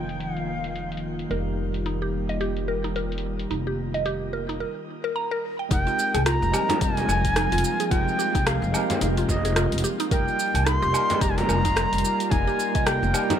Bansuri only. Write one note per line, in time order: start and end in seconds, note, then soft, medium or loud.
0.00 0.22 G5 medium
0.20 1.03 F5 medium
5.72 6.23 G5 loud
6.26 6.83 A#5 loud
6.82 7.93 G#5 loud
7.91 8.48 G5 loud
8.46 9.01 F5 medium
9.01 9.08 F5 medium
9.29 9.80 D#5 medium
10.11 10.67 G5 loud
10.66 11.22 C6 loud
11.21 11.31 A#5 loud
11.30 11.39 G#5 medium
11.37 12.32 A#5 loud
12.30 12.87 G#5 loud
12.86 13.39 G5 loud